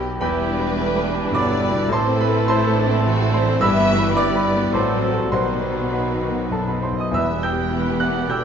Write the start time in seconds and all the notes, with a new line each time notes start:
Already playing: B1 B2 F#3 F#4 G4 B4 G5
0.18 E1 E2 E3 G3 B3 E4 G4 B4 G5 B5
0.39 G3
0.49 D4
0.60 B4
0.76 A3 E4 G4 B4
0.96 B4
1.05 G3
1.14 G3
1.32 G1 G2 B2 F#3 B3 E4 A4 B4 D5 B5 D6
1.50 E4
1.62 G3 B3
1.70 B2
1.89 A1 A2 E3 A3 C4 A4 C5 C6
1.93 E4 C5 A5
2.08 C4
2.20 B4 B5
2.29 A4
2.48 E4 C5 A5 C6
2.67 A4
2.77 D4
2.85 C4
3.05 C3 E3 C4 F#4
3.22 E4
3.31 D3 C5 C6
3.35 E4 C5
3.42 E3
3.59 G1 G2 E3 B3 G4 B4 E5 B5 E6
3.63 G3 E4
3.79 B3
3.89 A3 F#4
3.98 B4
4.15 G3 B3 E4 G4 B4 D5 D6
4.35 B4
4.44 F#3
4.56 B3
4.72 A1 A2 E3 F#3 C4 F#4 A4 C5 A5 C6
4.94 F#3
5.02 A4
5.12 F#4 A4
5.30 B1 B2 D#3 B3 D#4 F#4 B4 C5 F#5 C6
5.52 B3
5.72 F#4
5.90 F#3 D#4 B4 F#5 B5
6.12 F#4
6.21 D#3
6.30 B3
6.50 F#2 F#3 A4 A5
6.64 B4
6.68 D#4 B4 B5
6.79 E3 C5
6.83 C5 C6
6.92 F#2 D#5
6.98 D#5 D#6
7.09 E1 E2 E3 G3 B3 G4 B4 E5
7.13 E3 B3 E5 B5 E6
7.29 B3
7.39 E4 G5
7.43 G5 E6 G6
7.51 G4
7.58 B3
7.70 E3 G3 E4 B4
7.88 B3 G4
7.99 E4 D5 F#5 F#6
8.08 B3
8.15 B3
8.25 B2 D3 G4 G5
8.30 G3 G5 E6 G6